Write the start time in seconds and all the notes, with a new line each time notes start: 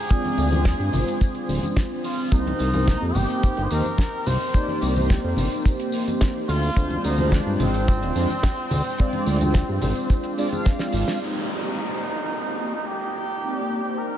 Already playing: G#4
0.09 G#3 C4 D4 F4 D5, kick, closed hi-hat, tambourine
0.25 open hi-hat, high conga
0.38 D2, open hi-hat, tambourine
0.51 G#3 C4 D4 F4 C5, tambourine, high conga
0.65 kick, snare, closed hi-hat, tambourine
0.80 G2, closed hi-hat
0.93 G#1, open hi-hat, tambourine, high conga, low conga
1.08 closed hi-hat, tambourine
1.21 kick, closed hi-hat, tambourine
1.35 closed hi-hat
1.49 D1, open hi-hat, tambourine
1.63 closed hi-hat, tambourine, high conga
1.77 kick, snare, closed hi-hat, tambourine
2.04 F4, open hi-hat, tambourine
2.19 tambourine
2.31 C2 A#3 C4 D#4 G4 C5, kick, closed hi-hat, tambourine
2.47 closed hi-hat, high conga
2.59 C2, open hi-hat, tambourine
2.73 A#3 C4 D#4 G4 C5, tambourine, high conga
2.87 kick, snare, closed hi-hat, tambourine
3.02 F2
3.15 G1 G4, open hi-hat, tambourine, high conga, low conga
3.30 closed hi-hat, tambourine
3.43 G1, kick, closed hi-hat, tambourine
3.57 G1, closed hi-hat
3.64 C5
3.71 D#2 A#3 C4 D#4 G4 A#4 C5, open hi-hat, tambourine
3.85 closed hi-hat, tambourine, high conga
3.98 kick, snare, closed hi-hat, tambourine
4.27 C2 C5, open hi-hat, tambourine, low conga
4.40 tambourine
4.54 A#3 C4 D#4 G4 D5, kick, closed hi-hat, tambourine
4.68 open hi-hat, high conga
4.82 C2, open hi-hat, tambourine
4.95 A#3 C4 D#4 G4 C5, tambourine, high conga
5.09 kick, snare, closed hi-hat, tambourine
5.24 F2
5.37 G1, open hi-hat, tambourine, high conga, low conga
5.52 closed hi-hat, tambourine
5.65 kick, closed hi-hat, tambourine
5.80 closed hi-hat
5.92 open hi-hat, tambourine
6.08 closed hi-hat, tambourine, high conga
6.21 kick, snare, closed hi-hat, tambourine
6.49 D2 F4, open hi-hat, tambourine
6.63 tambourine
6.76 D2 G#3 C4 D4 F4 C5, kick, closed hi-hat, tambourine
6.90 closed hi-hat, high conga
7.04 D2 D#4, open hi-hat, tambourine
7.18 G#3 C4 D4 F4 C5, tambourine, high conga
7.32 D4, kick, snare, closed hi-hat, tambourine
7.46 G2
7.53 D4
7.60 G#1 C4, open hi-hat, tambourine, high conga, low conga
7.74 closed hi-hat, tambourine
7.88 kick, closed hi-hat, tambourine
8.02 D1, closed hi-hat
8.15 F2 G#3 C4 D4 F4 C5, open hi-hat, tambourine
8.30 closed hi-hat, tambourine, high conga
8.43 kick, snare, closed hi-hat, tambourine
8.71 D2, open hi-hat, tambourine, low conga
8.85 tambourine
8.98 G#3 C4 D4 F4 D5, kick, closed hi-hat, tambourine
9.13 open hi-hat, high conga
9.26 D2, open hi-hat, tambourine
9.40 G#3 C4 D4 F4 C5, closed hi-hat, tambourine, high conga
9.54 kick, snare, closed hi-hat, tambourine
9.69 G2
9.82 G#1, open hi-hat, tambourine, high conga, low conga
9.95 closed hi-hat, tambourine
10.10 kick, closed hi-hat, tambourine
10.23 closed hi-hat
10.37 G#3 C4 D4 F4 D5, open hi-hat, tambourine
10.51 G#3 C4 D4 F4 F5, closed hi-hat, tambourine, high conga
10.65 kick, snare, closed hi-hat, tambourine
10.79 snare, closed hi-hat
10.92 G#1, open hi-hat, tambourine
11.08 snare, tambourine
11.20 A#3 C4 D#4 G4 C5, downlifter
11.62 A#3 C4 D#4 G4 C5
12.59 A#3 C4 D#4 G4 C5
12.88 G4
13.42 A#3 C4 D#4 G4 D5
13.84 A#3 C4 D#4 G4 C5
13.99 A#4